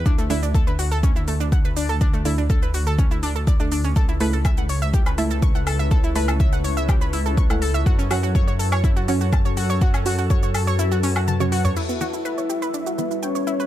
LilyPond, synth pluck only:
\new Staff \with { instrumentName = "Synth pluck" } { \time 4/4 \key e \dorian \tempo 4 = 123 d'16 a16 e'16 d'16 a'16 b'16 fis'16 a'16 cis'16 e'16 a16 d'16 fis''16 b'16 d'16 a'16 | d'16 a16 e'16 d'16 a'16 b'16 fis'16 a'16 cis'16 e'16 d'16 a'16 d''16 d'16 d'16 cis'16 | a'16 e'16 b'16 a'16 e''16 fis''16 cis''16 e''16 g'16 b'16 e'16 a'16 cis'''16 fis''16 a'16 e''16 | a'16 e'16 b'16 a'16 e''16 fis''16 cis''16 e''16 g'16 b'16 e'16 a'16 cis'''16 fis''16 a'16 e''16 |
fis'16 cis'16 fis'16 fis'16 cis''16 cis''16 a'16 cis''16 e'16 fis'16 cis'16 fis'16 a''16 cis''16 fis'16 cis''16 | fis'16 cis'16 fis'16 fis'16 cis''16 cis''16 a'16 cis''16 e'16 fis'16 cis'16 fis'16 a''16 cis''16 fis'16 cis''16 | e'16 b16 fis'16 e'16 b'16 cis''16 g'16 b'16 d'16 fis'16 b16 e'16 g''16 cis''16 e'16 b'16 | }